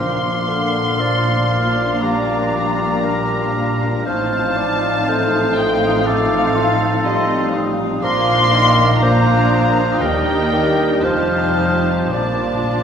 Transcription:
Already playing: A#1 A#2 F3 A#3 D4 F4 F5 C6 D6
0.00 D4
0.23 A#3
0.49 D3 D4
0.74 A#3
0.98 F3 D4 D5 F6
1.25 F4
1.49 A#3 F6
1.75 D4
2.00 F3 G3 D5 A#5 D6
2.25 A#3
2.51 D4 D6
2.78 A#3
3.04 D4 A#4
3.30 F4
3.57 A#3
3.82 D4
4.06 A1 A2 F3 C4 D#4 F4 C5 F5 A5 F6
4.33 C4
4.56 D#4 D5
4.85 C4
5.07 A3 D#4 C5 F6
5.34 F4
5.57 C4 G5 D#6
5.84 D#4
6.06 A2 A3 A4 F5 D6
6.32 C4
6.55 D#4 C6
7.04 G3 D#4 D#5 C6
7.30 F4
7.53 C4 D#6
7.79 D#4
8.02 A#1 A#2 F3 A#3 D4 F4 A#4 F5 C6 D6
8.27 A#3
8.53 D#3 D4
8.78 A#3
8.99 A#3 D4 F4 C5 F5 D6
9.03 F3 A#5
9.27 F4
9.49 A#3 D#6
9.77 D4
9.99 D#2 D#3 G3 A#3 D#4 G4 A#4 D5
10.04 G5
10.28 D4
10.53 D#3 G4
10.79 D4
11.03 F1 F2 F3 D#4 G4 C5 A5 F6
11.33 C4
11.59 D#4 C5
11.86 C4
12.11 A#1 A#2 F3 D4 F4 D5 A5 D6
12.22 A#2
12.29 A#2
12.43 A#2 A#3
12.54 A#2
12.63 A#2
12.71 A#2 D4

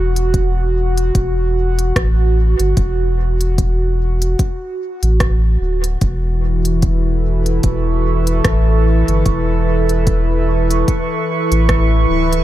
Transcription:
Already playing: E1 F#4
0.16 closed hi-hat
0.34 kick, closed hi-hat
0.98 closed hi-hat
1.15 E1, kick, closed hi-hat
1.79 closed hi-hat
1.96 A1, kick, cross-stick, closed hi-hat
2.59 G1, closed hi-hat
2.77 E1, kick, closed hi-hat
3.41 closed hi-hat
3.58 kick, closed hi-hat
4.22 closed hi-hat
4.39 kick, closed hi-hat
5.03 A1, closed hi-hat
5.20 kick, cross-stick, closed hi-hat
5.61 D1
5.84 closed hi-hat
6.01 E1 E3 C#6, kick, closed hi-hat
6.65 E4, closed hi-hat
6.81 B4, kick, closed hi-hat
6.91 A4
7.44 E5, closed hi-hat
7.63 E1, kick, closed hi-hat
8.27 closed hi-hat
8.45 A1, kick, cross-stick, closed hi-hat
9.08 G1, closed hi-hat
9.26 E1, kick, closed hi-hat
9.89 closed hi-hat
10.07 kick, closed hi-hat
10.71 closed hi-hat
10.88 kick, closed hi-hat
11.52 A1, closed hi-hat
11.69 kick, cross-stick, closed hi-hat
12.10 D1
12.33 closed hi-hat

